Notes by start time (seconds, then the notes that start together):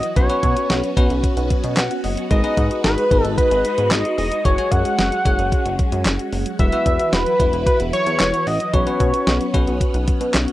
Already playing: E3 E4 F#4 B4 D#5
0.03 F#3, closed hi-hat
0.16 B1 F#3 B3 C#4 F#4 B4 C#5, kick, closed hi-hat
0.30 B3 C#4 F#4 B4, closed hi-hat
0.43 B2 C#4, kick, closed hi-hat
0.57 F#4, closed hi-hat
0.70 B1 F#5, snare, closed hi-hat
0.84 F#3, closed hi-hat
0.97 B1 B3 C#4 F#4 B4, kick, closed hi-hat
1.10 B1 C#4, closed hi-hat
1.23 F#4, kick, closed hi-hat
1.37 B1 F#5, closed hi-hat
1.50 F#3, kick, closed hi-hat
1.64 B2 B3, closed hi-hat
1.77 B1 C#4 F#5, snare, clap, closed hi-hat
1.91 F#4, closed hi-hat
2.04 F#1 D#5 F#5, open hi-hat
2.17 F#3, closed hi-hat
2.31 G#1 G#3 D#4 G#4 B4 D#5, kick, closed hi-hat
2.44 B3 D#4 G#4 B4, closed hi-hat
2.57 G#2 D#4, kick, closed hi-hat
2.71 F#4, closed hi-hat
2.84 G#1 G#4 B4, snare, closed hi-hat
2.98 G#3, closed hi-hat
3.11 G#1 B3 D#4 G#4 B4, kick, closed hi-hat
3.25 G#1 D#4, closed hi-hat
3.38 F#4 B4, kick, closed hi-hat
3.51 G#1 G#4, closed hi-hat
3.65 G#3, closed hi-hat
3.78 G#2 B3, closed hi-hat
3.91 G#1 D#4 D#5, snare, clap, closed hi-hat
4.05 F#4, closed hi-hat
4.18 E1 G#4 D#5, open hi-hat
4.32 G#3, closed hi-hat
4.45 F#1 F#3 C#4 F#4 G#4 C#5, kick, closed hi-hat
4.58 G#3 F#4 G#4 C#5, closed hi-hat
4.71 F#2 C#4 F#5, kick, closed hi-hat
4.85 F#4, closed hi-hat
4.99 F#1 F#5, snare, closed hi-hat
5.12 F#3, closed hi-hat
5.25 F#1 G#3 F#4 G#4 C#5, kick, closed hi-hat
5.39 F#1 C#4, closed hi-hat
5.52 F#4, kick, closed hi-hat
5.65 F#1 F#5, closed hi-hat
5.79 F#3, kick, closed hi-hat
5.92 F#2 G#3, closed hi-hat
6.05 F#1 C#4, snare, clap, closed hi-hat
6.19 F#4, closed hi-hat
6.33 F#1 F#5, open hi-hat
6.46 F#3, closed hi-hat
6.59 E1 E3 F#3 E4 F#4 B4 E5, kick, closed hi-hat
6.72 B3 E4 F#4 B4, closed hi-hat
6.86 E2 E4, kick, closed hi-hat
6.99 F#4, closed hi-hat
7.13 E1 B4 F#5, snare, closed hi-hat
7.26 F#3, closed hi-hat
7.40 E1 B3 E4 F#4 B4, kick, closed hi-hat
7.53 E1 E4, closed hi-hat
7.66 F#4 B4, kick, closed hi-hat
7.80 E1 F#5, closed hi-hat
7.93 F#3 C#5, closed hi-hat
8.07 E2 B3, closed hi-hat
8.20 E1 E4, snare, clap, closed hi-hat
8.33 F#4, closed hi-hat
8.47 A1 D#5 F#5, open hi-hat
8.60 F#3, closed hi-hat
8.74 B1 F#3 B3 C#4 F#4 B4 C#5, kick, closed hi-hat
8.87 B3 C#4 F#4 B4, closed hi-hat
9.00 B2 C#4, kick, closed hi-hat
9.14 F#4, closed hi-hat
9.27 B1 F#5, snare, closed hi-hat
9.40 F#3, closed hi-hat
9.54 B1 B3 C#4 F#4 B4, kick, closed hi-hat
9.67 B1 C#4, closed hi-hat
9.81 F#4, kick, closed hi-hat
9.94 B1 F#5, closed hi-hat
10.07 F#3, kick, closed hi-hat
10.21 B2 B3, closed hi-hat
10.34 B1 C#4, snare, clap, closed hi-hat
10.48 F#4, closed hi-hat